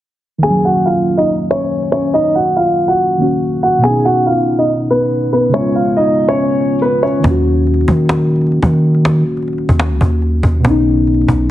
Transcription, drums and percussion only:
7.24 cajon bass
7.67 cajon slap
7.74 cajon slap
7.81 cajon slap
7.88 cajon bass
8.09 cajon slap
8.31 cajon slap
8.36 cajon slap
8.41 cajon slap
8.47 cajon slap
8.52 cajon slap
8.63 cajon bass
8.73 cajon slap
8.95 cajon slap
9.05 cajon slap
9.37 cajon slap
9.42 cajon slap
9.48 cajon slap
9.53 cajon slap
9.58 cajon slap
9.69 cajon bass
9.79 cajon slap
10.01 cajon bass
10.22 cajon slap
10.43 cajon bass
10.65 cajon bass
11.07 cajon slap
11.14 cajon slap
11.21 cajon slap
11.28 cajon bass

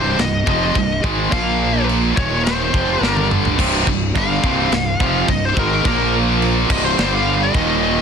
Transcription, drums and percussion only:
0.19 snare, china
0.47 kick
0.75 kick, china
1.04 kick
1.32 kick, china
1.89 china
2.17 kick
2.46 snare, china
2.74 kick
3.03 snare
3.17 high tom
3.31 mid tom
3.45 floor tom
3.59 kick, crash, china
3.87 kick
4.16 kick, china
4.44 kick
4.72 snare, china
5.00 kick
5.28 kick, china
5.57 kick
5.85 kick, china
6.42 china
6.70 kick, crash
6.98 snare, china
7.54 kick, china

